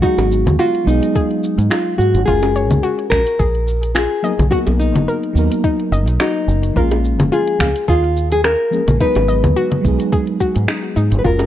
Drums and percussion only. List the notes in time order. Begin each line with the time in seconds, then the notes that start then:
0.03 kick, shaker
0.18 closed hi-hat, high bongo
0.32 shaker
0.47 closed hi-hat, low conga, shaker
0.60 shaker
0.75 closed hi-hat
0.88 shaker
1.03 closed hi-hat, shaker
1.16 kick, shaker
1.31 closed hi-hat
1.44 shaker
1.59 closed hi-hat, shaker
1.71 finger snap, high bongo, shaker
2.00 shaker
2.15 closed hi-hat, shaker
2.28 kick, shaker
2.43 closed hi-hat, high bongo
2.56 shaker
2.71 closed hi-hat, low conga, shaker
2.84 shaker
2.99 closed hi-hat
3.11 finger snap, kick, high bongo, shaker
3.27 closed hi-hat, shaker
3.40 kick, shaker
3.55 closed hi-hat
3.68 shaker
3.83 closed hi-hat, shaker
3.95 finger snap, high bongo, shaker
4.24 shaker
4.39 closed hi-hat, low conga, shaker
4.52 kick, shaker
4.67 closed hi-hat, high bongo
4.80 shaker
4.96 closed hi-hat, low conga, shaker
5.09 shaker
5.23 closed hi-hat
5.36 shaker
5.52 closed hi-hat, shaker
5.64 kick, shaker
5.80 closed hi-hat
5.93 shaker
6.08 closed hi-hat, shaker
6.20 finger snap, high bongo, shaker
6.49 shaker
6.63 closed hi-hat, shaker
6.76 kick, shaker
6.91 closed hi-hat, high bongo
7.05 shaker
7.20 closed hi-hat, low conga, shaker
7.33 shaker
7.48 closed hi-hat
7.60 finger snap, kick, high bongo, shaker
7.76 closed hi-hat, shaker
7.88 kick, shaker
8.04 closed hi-hat
8.17 shaker
8.32 closed hi-hat, shaker
8.44 finger snap, high bongo, shaker
8.73 shaker
8.88 closed hi-hat, low conga, shaker
9.00 kick, shaker
9.15 closed hi-hat, high bongo
9.28 shaker
9.44 closed hi-hat, low conga, shaker
9.57 shaker
9.72 closed hi-hat, low conga
9.85 kick, shaker
10.00 closed hi-hat, shaker
10.13 kick, shaker
10.27 closed hi-hat
10.40 kick, shaker
10.56 closed hi-hat, shaker
10.68 finger snap, high bongo, shaker
10.84 closed hi-hat
10.97 shaker
11.12 closed hi-hat, shaker
11.25 kick, shaker
11.39 closed hi-hat, high bongo